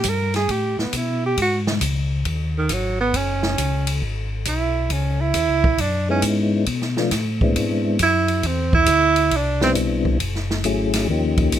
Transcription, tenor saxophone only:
0.00 0.11 G4 loud
0.09 0.35 A#4 loud
0.36 0.53 G#4 loud
0.52 0.80 G4 medium
0.81 0.99 B3 medium
0.97 1.25 E4 medium
1.26 1.39 G4 loud
1.42 1.59 F#4 medium
2.58 2.74 D#3 medium
2.73 3.00 F#3 medium
3.01 3.18 B3 loud
3.17 4.04 C#4 medium
4.48 4.94 E4 medium
4.93 5.23 C#4 medium
5.21 5.83 E4 loud
5.81 6.10 D4 medium
6.11 6.24 C#4 loud
8.03 8.48 E4 loud
8.47 8.74 C4 medium
8.74 9.38 E4 loud
9.37 9.63 D4 loud
9.63 9.72 C4 loud

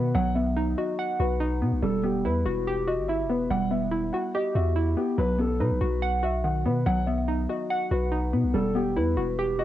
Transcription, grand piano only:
0.00 0.13 B4 medium
0.15 0.33 F#5 loud
0.35 0.75 E5 medium
0.78 1.17 D#5 medium
1.20 1.79 B4 medium
1.82 2.01 A4 medium
2.04 2.23 G4 medium
2.25 2.84 B4 medium
2.88 3.06 D#5 medium
3.08 3.27 E5 medium
3.30 3.48 B4 medium
3.51 3.69 F#5 loud
3.71 4.11 E5 medium
4.13 4.32 F#5 medium
4.35 4.53 D#5 medium
4.55 4.95 E5 medium
4.97 5.16 G4 medium
5.18 5.37 B4 loud
5.39 5.58 A4 medium
5.60 6.19 B4 medium
6.24 6.42 E5 medium
6.44 6.63 F#5 medium
6.66 6.84 B4 medium
6.86 7.05 F#5 loud
7.06 7.46 E5 medium
7.49 7.88 D#5 medium
7.91 8.50 B4 medium
8.54 8.73 A4 medium
8.76 8.94 G4 medium
8.96 9.55 B4 medium
9.59 9.64 D#5 medium

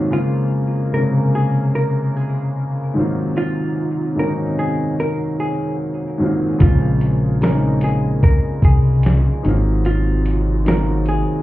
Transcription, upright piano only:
0.00 0.14 G#2 medium
0.00 0.13 D#3 medium
0.00 0.14 F#3 medium
0.00 0.13 A#3 medium
0.00 0.14 C4 medium
0.00 0.14 F4 medium
0.11 0.65 C#3 medium
0.11 0.65 G#3 medium
0.11 0.66 A#3 medium
0.15 0.67 C4 medium
0.15 0.68 F4 medium
0.92 1.00 C3 medium
0.92 2.00 G#3 medium
0.92 2.01 A#3 medium
0.96 2.03 C#3 medium
0.96 2.01 C4 medium
0.96 2.02 F4 medium
2.94 3.96 G#2 medium
2.94 3.96 D#3 medium
2.94 3.97 F#3 medium
2.94 3.97 A#3 medium
2.98 3.98 C4 medium
2.98 3.99 F4 medium
4.15 5.23 G#2 medium
4.15 5.24 D#3 medium
4.15 5.24 F#3 medium
4.15 5.25 A#3 medium
4.20 5.25 C4 medium
4.20 4.27 C#4 medium
4.27 5.29 D#4 medium
6.18 6.48 G#2 medium
6.18 6.49 D#3 medium
6.18 6.49 F#3 medium
6.18 6.50 A#3 medium
6.23 6.50 C4 medium
6.23 6.51 F4 medium
6.59 7.13 C#3 medium
6.59 7.14 G#3 medium
6.59 7.15 A#3 medium
6.63 7.15 C4 medium
6.63 7.16 F4 medium
7.41 8.48 C#3 medium
7.41 8.49 G#3 medium
7.41 8.49 A#3 medium
7.45 8.50 C4 medium
7.45 7.52 C#4 medium
7.53 8.54 D#4 medium
9.43 10.44 D#3 medium
9.43 10.45 F#3 medium
9.43 10.46 A#3 medium
9.47 10.47 C4 medium
9.47 10.47 F4 medium
10.65 11.43 D#3 medium
10.65 11.43 F#3 medium
10.65 11.43 A#3 medium
10.69 11.43 C4 medium
10.69 11.43 F4 medium

